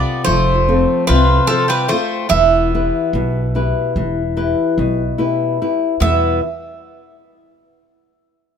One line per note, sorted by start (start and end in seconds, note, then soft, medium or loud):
0.00 0.25 C3 medium
0.00 0.23 B3 medium
0.00 0.51 F4 medium
0.00 0.52 A4 soft
0.00 0.23 D5 medium
0.24 0.85 F1 loud
0.24 1.07 F3 medium
0.24 1.04 A3 medium
0.24 1.04 C5 loud
0.69 1.34 C4 medium
0.69 1.34 F4 soft
0.69 1.34 A4 soft
1.07 1.38 C2 medium
1.07 1.90 C3 medium
1.07 1.47 F3 medium
1.07 1.46 B4 medium
1.47 1.68 F3 medium
1.47 1.90 F4 soft
1.47 1.68 A4 medium
1.47 1.91 A4 soft
1.47 1.91 C5 medium
1.68 1.88 G3 medium
1.68 1.89 B4 medium
1.88 2.28 A3 medium
1.88 2.24 F4 medium
1.88 2.25 A4 soft
1.88 2.28 C5 medium
1.93 2.25 C5 medium
2.29 2.89 E1 loud
2.29 3.12 E3 medium
2.29 5.55 B3 medium
2.29 5.55 E5 medium
2.75 3.40 E4 medium
2.75 3.40 G4 soft
2.75 3.40 B4 medium
3.13 3.71 B1 medium
3.13 3.94 B2 medium
3.55 4.21 E4 medium
3.55 4.21 G4 soft
3.55 4.21 B4 medium
3.96 4.53 E1 medium
3.96 4.76 E3 medium
4.37 5.03 E4 soft
4.37 5.03 G4 soft
4.37 5.03 B4 medium
4.78 5.07 B1 medium
4.78 5.58 B2 medium
5.18 5.60 E4 medium
5.18 5.61 G4 soft
5.18 5.61 B4 medium
5.62 5.94 E4 medium
5.62 5.94 G4 soft
5.62 5.94 B4 medium
6.00 6.39 E2 medium
6.00 6.40 E2 medium
6.00 6.40 B2 soft
6.00 6.40 G3 medium
6.00 6.39 B3 medium
6.00 6.41 B3 soft
6.00 6.41 E4 soft
6.00 6.41 B4 medium
6.00 6.40 E5 medium